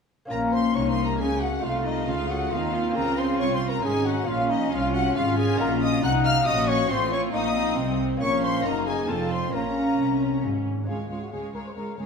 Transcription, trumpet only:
0.31 A#4
0.53 C5
0.75 C#5
0.89 C5
1.04 A#4
1.19 G#4
1.41 F#4
1.63 F4
1.85 D#4
2.07 F4
2.29 F#4
2.51 F4
2.96 A#4
3.18 C5
3.40 C#5
3.55 C5
3.70 A#4
3.84 G#4
4.06 F#4
4.28 F4
4.50 D#4
4.72 F4
4.94 F#4
5.16 F4
5.38 G#4
5.60 A#4
5.82 D#5
6.04 F#5
6.26 F5
6.47 D#5
6.68 C#5
6.90 C5
7.12 C#5
7.34 D#5
8.21 C#5
8.44 C5
8.65 A#4
8.87 G#4
9.09 A4
9.32 C5
9.55 A#4
10.88 G#4
11.10 F4
11.21 F#4
11.32 G#4
11.54 A#4
11.66 C5
11.76 A#4
11.98 G#4

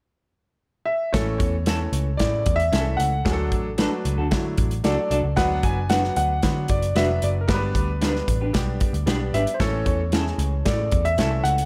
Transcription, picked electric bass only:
1.14 A1
1.40 E2
1.92 C#2
2.20 A2
2.46 E2
2.72 C2
2.99 C#2
3.26 D2
3.52 A1
4.05 C#2
4.18 D2
4.32 D3
4.58 A1
4.84 C#2
5.11 C2
5.23 C#2
5.37 D2
5.63 F#1
6.17 D2
6.43 D3
6.69 F#1
6.95 F1
7.23 F#1
7.49 G1
7.75 D2
8.28 A1
8.54 B1
8.81 muted picked electric bass stroke
8.93 D2
9.07 B1
9.33 G#1
9.60 A1
9.86 E2
10.38 C#2
10.66 A2
10.92 E2
11.17 C2
11.44 C#2

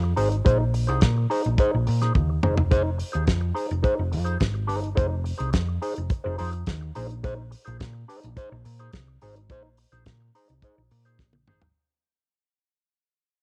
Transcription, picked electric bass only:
Already playing: F2
0.17 G#1
0.46 A#1
0.89 C2
1.02 A#2
1.46 A#1
1.74 A#1
1.88 A#2
2.16 D#2
2.45 F1
3.15 D#2
3.28 F2
3.71 F1
3.99 F1
4.13 F2
4.41 G#1
4.70 G1
4.98 F1
5.40 C2
5.54 F2
5.98 F1
6.26 F1
6.40 F2
6.67 D#2
6.96 A#1
7.68 A#1
7.81 A#2
8.24 A#1
8.52 A#1
8.66 A#2
8.94 C2
9.23 G#1
9.50 A#1
9.93 A#1
10.07 A#2
10.50 C2
10.78 A#1
10.92 A#2
11.20 A#1
11.48 G#1

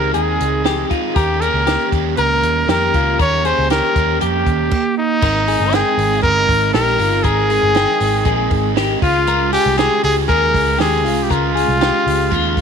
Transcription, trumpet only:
Already playing: A#4
0.15 G#4
1.15 G4
1.41 A#4
2.18 A#4
2.70 A#4
3.21 C#5
3.46 C5
3.71 A#4
4.21 G4
4.98 D#4
5.74 G#4
6.23 A#4
6.74 A#4
7.24 G#4
9.02 F4
9.53 G4
9.78 G#4
10.04 G#4
10.29 A#4
10.81 G#4
11.23 G4
11.32 F4

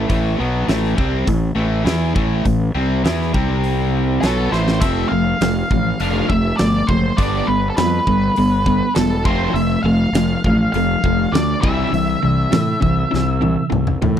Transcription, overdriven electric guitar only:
0.08 A2 E3 A3
0.39 B2 F#3 B3
0.68 A2 E3 A3
0.96 C3 G3 C4
1.27 A2 E3
1.55 A2 E3 A3
1.84 E3 B3 E4
2.14 A2 E3 A3
2.45 A2 E3
2.75 C3 G3 C4
3.04 E3 B3 E4
3.34 C3 G3 C4
4.23 B2 F#3 B3
4.51 A2 E3 A3
4.81 F3 A3 C4
5.12 F3 A3
5.41 F3 A3
5.71 F3 A3
6.01 F3 A3 D4
6.32 F3 A3
6.61 F3 A3
6.89 F3 A3
7.18 G3 B3 D4
7.48 G3 B3
7.78 G3 B3
8.07 G3 B3
8.38 G3 B3
8.67 G3 B3
8.96 G3 B3
9.25 F3 A3 C4
9.55 F3 A3
9.85 F3 A3
10.16 F3 A3
10.46 F3 A3
10.75 F3 A3
11.05 F3 A3
11.33 F3 A3
11.62 C3 E3 G3
11.92 C3 E3
12.22 C3 E3
12.52 C3 E3
12.81 C3 E3
13.11 C3 E3
13.41 C3 E3
13.70 C3 E3
14.02 C3 E3

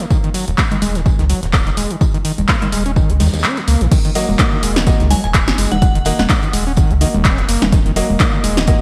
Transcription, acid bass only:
0.00 D#3
0.11 D#3
0.24 D#3
0.34 F#3
0.48 D#2
0.58 A#3
0.71 D#3
0.82 G#3
0.95 D#3
1.06 D#3
1.19 D#3
1.30 F#3
1.43 D#2
1.53 A#3
1.67 D#3
1.77 G#3
1.91 D#3
2.01 D#3
2.14 D#3
2.25 D#3
2.38 D#2
2.49 A#3
2.62 D#3
2.72 G#3
2.86 C#4
2.96 D#3
3.10 A#3
3.20 D#3
3.33 D#2
3.44 C#4
3.57 D#3
3.68 A#3
3.81 D#3
3.92 D#3
4.05 D#3
4.15 F#3
4.29 D#2
4.39 A#3
4.53 D#3
4.63 G#3
4.76 D#3
4.87 D#3
5.00 D#3
5.11 F#3
5.24 D#2
5.34 A#3
5.48 D#3
5.58 G#3
5.72 D#3
5.82 D#3
5.95 D#3
6.06 D#3
6.19 D#2
6.30 A#3
6.43 D#3
6.53 G#3
6.67 C#4
6.77 D#3
6.91 A#3
7.01 D#3
7.14 D#2
7.25 C#4
7.38 D#3
7.49 A#3
7.62 D#3
7.72 D#3
7.86 D#3
7.96 F#3
8.10 D#2
8.20 A#3
8.33 D#3
8.44 G#3
8.57 D#3
8.68 D#3

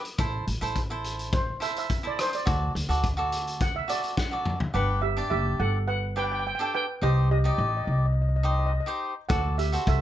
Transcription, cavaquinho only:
0.18 E4 A4 C5
0.61 E4 A4 C5
0.90 E4 A4 C5
1.60 E4 A4 C5
2.03 E4 A4 C5
2.46 F#4 A4 D5
2.89 F#4 A4 D5
3.17 F#4 A4 D5
3.88 F#4 A4 D5
4.31 F#4 A4 D5
4.74 D4 G4 B4
5.17 D4 G4 D5
6.16 D4 G4 B4
6.59 D4 G4 A4
7.02 D#4 G4 C5
7.44 D#4 G4 D5
8.43 D#4 G4 C5
8.86 D#4 G4 C5
9.29 F#4 A4 D5
9.72 F#4 A4 C5

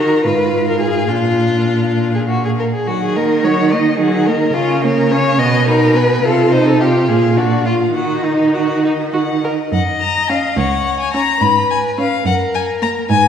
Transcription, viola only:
Already playing: F#4
0.25 F4
1.11 D4
2.88 F#3
3.16 A#3
3.44 F#3
3.72 A#3
4.00 F#3
4.28 A#3
4.55 C#4
4.84 A#3
5.12 C#4
5.39 B3
5.68 D#4
5.95 B3
6.24 F4
6.52 D#4
6.80 F4
7.09 F4
7.37 D4
7.66 F4
7.95 F#4
8.25 D#4
8.54 F#4
8.84 D#4
9.13 F#4
9.44 A#4
10.30 C#4
11.14 C#4
11.98 C#4
12.82 A#3

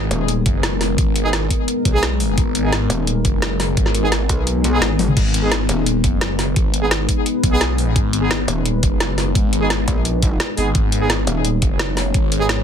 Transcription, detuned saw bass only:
0.46 F#1
0.98 G#1
1.85 B1
2.38 G#1
3.25 F#1
3.77 G#1
5.17 G#1
6.04 F#1
6.56 G#1
7.43 B1
7.96 G#1
8.83 F#1
9.35 G#1
10.58 G#1
10.75 G#1
11.62 F#1
12.14 G#1

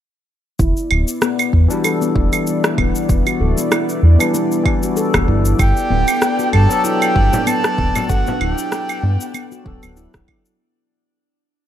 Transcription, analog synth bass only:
0.59 E1
0.91 D1
1.53 E2
2.15 E1
2.78 D1
3.09 E1
3.40 D1
4.03 E2
5.14 E1
5.28 G1
5.59 G1
5.91 D1
6.53 G2
7.16 G1
7.78 D1
8.10 G1
8.41 D1
9.03 G2
9.66 D1
9.83 D1
10.14 D1

